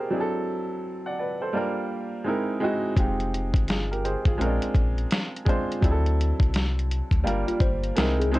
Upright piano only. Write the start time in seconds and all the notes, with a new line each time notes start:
Already playing: G#3 C4 D4 F4 G#4 C5 D5 F5
0.00 G4 A#4
0.10 F#3 C4 D4 E4 G#4
0.20 A4
1.06 D5 F#5
1.19 B4 D5
1.42 A4 C5
1.53 G3 A#3 D4 F4
1.57 A#4
2.24 G#3 C4 D#4 E4 A#4
2.60 G#3 C4 D#4 E4 F#4
2.96 G#3 C4 D#4 F4 G4
3.69 F4 G#4
3.91 G4 A#4
4.05 G#4 C5
4.27 F4 G#4
4.38 G#3 C4 C#4 F4 A#4
4.46 D4
5.45 G#3 C4 D4 F4 C5
5.81 F#3 C4 D4 E4 G#4
5.91 A4
7.24 G3 A#3 D4 F4 A#4
7.95 G#3 C4 D#4 E4 A#4
8.32 G#3 C4 D#4 E4 C5